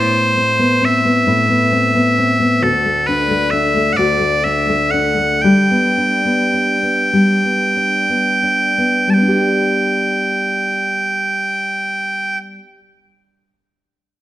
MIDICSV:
0, 0, Header, 1, 3, 480
1, 0, Start_track
1, 0, Key_signature, 1, "major"
1, 0, Tempo, 903614
1, 1389, Time_signature, 3, 2, 24, 8
1, 2356, Tempo, 991736
1, 2836, Tempo, 1083032
1, 3316, Tempo, 1234568
1, 3796, Tempo, 1398601
1, 6015, End_track
2, 0, Start_track
2, 0, Title_t, "Bagpipes"
2, 0, Program_c, 0, 109
2, 0, Note_on_c, 0, 72, 75
2, 451, Note_off_c, 0, 72, 0
2, 451, Note_on_c, 0, 76, 69
2, 1397, Note_off_c, 0, 76, 0
2, 1397, Note_on_c, 0, 69, 59
2, 1628, Note_off_c, 0, 69, 0
2, 1628, Note_on_c, 0, 71, 59
2, 1862, Note_off_c, 0, 71, 0
2, 1862, Note_on_c, 0, 76, 68
2, 2087, Note_off_c, 0, 76, 0
2, 2087, Note_on_c, 0, 78, 65
2, 2107, Note_off_c, 0, 78, 0
2, 2107, Note_on_c, 0, 74, 65
2, 2358, Note_off_c, 0, 74, 0
2, 2358, Note_on_c, 0, 76, 69
2, 2585, Note_off_c, 0, 76, 0
2, 2585, Note_on_c, 0, 78, 69
2, 2832, Note_off_c, 0, 78, 0
2, 2832, Note_on_c, 0, 79, 73
2, 4261, Note_off_c, 0, 79, 0
2, 4261, Note_on_c, 0, 81, 44
2, 4274, Note_off_c, 0, 81, 0
2, 4274, Note_on_c, 0, 79, 44
2, 5386, Note_off_c, 0, 79, 0
2, 6015, End_track
3, 0, Start_track
3, 0, Title_t, "Nylon-string guitar"
3, 0, Program_c, 1, 24
3, 0, Note_on_c, 1, 45, 57
3, 0, Note_on_c, 1, 57, 39
3, 0, Note_on_c, 1, 59, 40
3, 0, Note_on_c, 1, 64, 48
3, 196, Note_off_c, 1, 57, 0
3, 198, Note_on_c, 1, 60, 44
3, 214, Note_off_c, 1, 59, 0
3, 314, Note_on_c, 1, 59, 42
3, 425, Note_off_c, 1, 60, 0
3, 431, Note_on_c, 1, 60, 45
3, 552, Note_off_c, 1, 59, 0
3, 558, Note_on_c, 1, 59, 40
3, 667, Note_off_c, 1, 45, 0
3, 671, Note_off_c, 1, 64, 0
3, 673, Note_on_c, 1, 45, 54
3, 677, Note_on_c, 1, 64, 46
3, 787, Note_off_c, 1, 59, 0
3, 793, Note_on_c, 1, 59, 45
3, 906, Note_off_c, 1, 60, 0
3, 913, Note_on_c, 1, 60, 47
3, 1029, Note_off_c, 1, 59, 0
3, 1035, Note_on_c, 1, 59, 44
3, 1151, Note_off_c, 1, 60, 0
3, 1159, Note_on_c, 1, 60, 42
3, 1269, Note_off_c, 1, 59, 0
3, 1275, Note_on_c, 1, 59, 43
3, 1388, Note_on_c, 1, 38, 58
3, 1389, Note_off_c, 1, 64, 0
3, 1392, Note_on_c, 1, 66, 50
3, 1435, Note_off_c, 1, 45, 0
3, 1439, Note_off_c, 1, 59, 0
3, 1441, Note_off_c, 1, 60, 0
3, 1517, Note_on_c, 1, 57, 43
3, 1639, Note_on_c, 1, 62, 45
3, 1751, Note_off_c, 1, 57, 0
3, 1758, Note_on_c, 1, 57, 43
3, 1873, Note_off_c, 1, 62, 0
3, 1875, Note_on_c, 1, 62, 45
3, 1991, Note_off_c, 1, 57, 0
3, 1999, Note_on_c, 1, 57, 39
3, 2107, Note_off_c, 1, 38, 0
3, 2108, Note_off_c, 1, 66, 0
3, 2113, Note_on_c, 1, 38, 52
3, 2119, Note_on_c, 1, 66, 45
3, 2226, Note_off_c, 1, 57, 0
3, 2232, Note_on_c, 1, 57, 43
3, 2360, Note_off_c, 1, 62, 0
3, 2362, Note_on_c, 1, 62, 48
3, 2473, Note_off_c, 1, 57, 0
3, 2480, Note_on_c, 1, 57, 44
3, 2597, Note_off_c, 1, 62, 0
3, 2599, Note_on_c, 1, 62, 39
3, 2708, Note_off_c, 1, 57, 0
3, 2714, Note_on_c, 1, 57, 42
3, 2840, Note_off_c, 1, 66, 0
3, 2842, Note_on_c, 1, 55, 54
3, 2843, Note_on_c, 1, 67, 48
3, 2883, Note_off_c, 1, 57, 0
3, 2884, Note_off_c, 1, 38, 0
3, 2960, Note_on_c, 1, 59, 41
3, 3079, Note_off_c, 1, 62, 0
3, 3081, Note_on_c, 1, 62, 44
3, 3200, Note_off_c, 1, 59, 0
3, 3202, Note_on_c, 1, 59, 38
3, 3325, Note_off_c, 1, 62, 0
3, 3326, Note_on_c, 1, 62, 42
3, 3438, Note_off_c, 1, 59, 0
3, 3440, Note_on_c, 1, 59, 34
3, 3556, Note_off_c, 1, 55, 0
3, 3557, Note_off_c, 1, 67, 0
3, 3558, Note_on_c, 1, 55, 48
3, 3559, Note_on_c, 1, 67, 39
3, 3677, Note_off_c, 1, 59, 0
3, 3679, Note_on_c, 1, 59, 34
3, 3801, Note_off_c, 1, 62, 0
3, 3803, Note_on_c, 1, 62, 37
3, 3915, Note_off_c, 1, 59, 0
3, 3916, Note_on_c, 1, 59, 36
3, 4030, Note_off_c, 1, 62, 0
3, 4031, Note_on_c, 1, 62, 33
3, 4150, Note_off_c, 1, 59, 0
3, 4151, Note_on_c, 1, 59, 33
3, 4252, Note_off_c, 1, 55, 0
3, 4253, Note_on_c, 1, 55, 41
3, 4281, Note_off_c, 1, 59, 0
3, 4282, Note_on_c, 1, 59, 50
3, 4301, Note_off_c, 1, 62, 0
3, 4302, Note_on_c, 1, 62, 43
3, 4323, Note_off_c, 1, 67, 0
3, 4324, Note_on_c, 1, 67, 49
3, 5454, Note_off_c, 1, 55, 0
3, 5484, Note_off_c, 1, 59, 0
3, 5504, Note_off_c, 1, 62, 0
3, 5525, Note_off_c, 1, 67, 0
3, 6015, End_track
0, 0, End_of_file